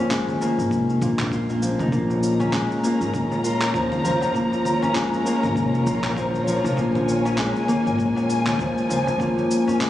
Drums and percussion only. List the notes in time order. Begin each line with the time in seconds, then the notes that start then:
0.11 kick, clap, shaker
0.28 darbuka ka, low conga, shaker
0.41 darbuka tek, shaker
0.59 shaker
0.71 kick, shaker
0.89 shaker
1.01 low conga, shaker
1.19 clap, darbuka dum, shaker
1.32 kick, shaker
1.49 darbuka dum, shaker
1.62 shaker
1.79 low conga, shaker
1.92 kick, shaker
2.10 darbuka ka, shaker
2.23 shaker
2.40 darbuka ka, low conga, shaker
2.53 kick, clap, shaker
2.71 darbuka ka, shaker
2.84 shaker
3.01 shaker
3.14 kick, low conga, shaker
3.32 darbuka tek, shaker
3.44 darbuka ka, shaker
3.61 clap, shaker
3.74 kick, shaker
3.92 low conga, shaker
4.05 shaker
4.21 darbuka tek, darbuka dum, shaker
4.35 kick, shaker
4.51 darbuka ka, shaker
4.65 low conga, shaker
4.82 darbuka ka, darbuka dum, shaker
4.95 kick, clap, shaker
5.13 shaker
5.26 darbuka tek, shaker
5.43 low conga, shaker
5.56 kick, shaker
5.74 shaker
5.87 shaker
6.04 clap, darbuka dum, shaker
6.17 kick, low conga, shaker
6.34 darbuka dum, shaker
6.48 shaker
6.65 shaker
6.77 kick, shaker
6.95 darbuka ka, low conga, shaker
7.08 shaker
7.26 darbuka ka, shaker
7.38 kick, clap, shaker
7.56 darbuka ka, shaker
7.68 low conga, shaker
7.87 shaker
7.99 kick, shaker
8.16 darbuka tek, shaker
8.29 darbuka ka, shaker
8.47 clap, low conga, shaker
8.59 kick, shaker
8.78 shaker
8.91 shaker
9.07 darbuka tek, darbuka dum, shaker
9.20 kick, low conga, shaker
9.38 darbuka ka, shaker
9.51 darbuka tek, shaker
9.67 darbuka ka, darbuka dum, shaker
9.80 kick, clap, shaker